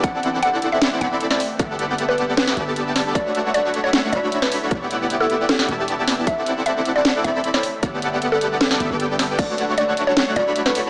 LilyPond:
<<
  \new Staff \with { instrumentName = "Synth pluck" } { \time 4/4 \key d \major \tempo 4 = 154 fis''8. r16 fis''8 r16 e''8 r16 fis''8 r16 d''16 r8 | r4 r16 b'8 r16 b'4.~ b'16 r16 | d''8. r16 d''8 r16 cis''8 r16 d''8 r16 b'16 r8 | r4 r16 a'8 r16 a'4.~ a'16 r16 |
e''8. r16 e''8 r16 d''8 r16 e''8 r16 cis''16 r8 | r4 r16 a'8 r16 a'4.~ a'16 r16 | d''8. r16 d''8 r16 cis''8 r16 d''8 r16 b'16 r8 | }
  \new Staff \with { instrumentName = "Supersaw synth" } { \time 4/4 \key d \major r2 r8 <c' e' a' d'' b''>4 r8 | <b g' a' d'' fis''>2~ <b g' a' d'' fis''>8 <b g' a' d'' a''>4. | <a fis' cis'' fis''>2~ <a fis' cis'' fis''>8 <a d' fis' cis'' b''>4. | <b e' g' d'' fis''>2~ <b e' g' d'' fis''>8 <b e' g' d'' a''>4. |
<c' e' a' d'' fis''>2~ <c' e' a' d'' fis''>8 <c' e' a' d'' b''>4 r8 | <b g' a' d'' fis''>2~ <b g' a' d'' fis''>8 <b g' a' d'' e''>16 <b g' a' d'' g''>4~ <b g' a' d'' g''>16 | <a d'>2~ <a d'>8 <a d' fis' cis'' b''>4. | }
  \new Staff \with { instrumentName = "Ambient pad" } { \time 4/4 \key d \major <d a c' e' e''>2.~ <d a c' e' e''>8 <g d' a' b'>8~ | <g d' a' b'>1 | <d a e' cis''>1 | <e b d' g'>1 |
<d a c' e'>2.~ <d a c' e'>8 <g d' a' b'>8~ | <g d' a' b'>1 | <d a e' cis'' fis''>1 | }
  \new Staff \with { instrumentName = "808-style bass" } { \clef bass \time 4/4 \key d \major d,,2~ d,,8 d,,4 r8 | g,,2~ g,,8 g,,4. | d,,2~ d,,8 d,,4. | e,,2~ e,,8 e,,4. |
d,,2~ d,,8 d,,4 r8 | g,,2~ g,,8 g,,16 g,,4~ g,,16 | d,,2~ d,,8 d,,4. | }
  \new DrumStaff \with { instrumentName = "Drums" } \drummode { \time 4/4 <hh bd>8 hh8 hh8 hh8 <hh sn>8 hh8 hh16 sn16 hho8 | <hh bd>8 hh8 hh8 hh8 <hh sn>16 sn16 hh8 hh8 <hho sn>8 | <hh bd>8 hh8 hh8 hh8 <hh sn>8 hh8 hh16 sn16 hho8 | <hh bd>8 hh8 hh8 hh8 <hh sn>16 sn16 hh8 hh8 <hho sn>8 |
<hh bd>8 hh8 hh8 hh8 <hh sn>8 hh8 hh16 sn16 hho8 | <hh bd>8 hh8 hh8 hh8 <hh sn>16 sn16 hh8 hh8 <hho sn>8 | <cymc hh bd cymr>8 hh8 hh8 hh8 <hh cymr sn>8 hh8 hh16 sn16 hho8 | }
>>